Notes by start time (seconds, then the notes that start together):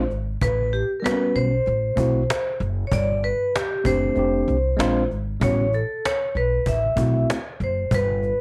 0.10 G#1, cajon slap
0.41 A1 B4, cajon bass
0.73 G4, cajon slap
1.00 G3 A#4
1.04 B3 C4 F#4 B4, cajon slap
1.11 C#4
1.35 B1 C5, cajon slap
1.66 A1, cajon slap
1.96 B1 A3 C4 E4, cajon bass
2.00 F#4
2.30 cajon slap
2.60 F#1, cajon slap
2.87 C#5
2.92 G1 D5, cajon bass
3.23 B4, cajon slap
3.56 G4, cajon slap
3.84 F#1 A3 C4 D4 G4 C5, cajon bass
4.15 F1 A3 C4 D4 G4, cajon slap
4.48 C2, cajon slap
4.77 A#1 G#3 C4 D4 F4, cajon slap
5.10 G#1, cajon slap
5.40 A1 G3 B3 C#4 C#5, cajon bass
5.44 F#4
5.73 A4, cajon slap
6.06 C#5, cajon slap
6.35 B1 B4, cajon slap
6.66 A1 E5, cajon bass
6.96 B1 A3 C4 E4, cajon bass
7.00 F#4
7.30 cajon slap
7.60 F#1 C5, cajon slap
7.91 G1 B4, cajon bass
8.23 cajon slap